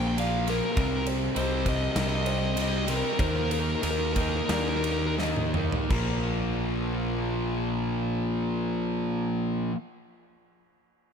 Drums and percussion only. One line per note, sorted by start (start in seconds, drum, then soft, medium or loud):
0.18 ride loud
0.48 snare soft
0.48 ride medium
0.77 kick loud
0.77 ride loud
1.07 ride medium
1.36 ride loud
1.66 kick medium
1.66 ride medium
1.96 snare loud
1.96 ride loud
2.26 ride medium
2.57 ride loud
2.88 snare soft
2.88 ride loud
3.19 kick loud
3.19 ride loud
3.51 ride medium
3.83 ride loud
4.16 kick medium
4.16 ride medium
4.49 snare loud
4.49 ride loud
4.84 ride medium
5.18 snare medium
5.36 mid tom medium
5.54 mid tom loud
5.72 floor tom loud
5.90 kick loud
5.90 crash medium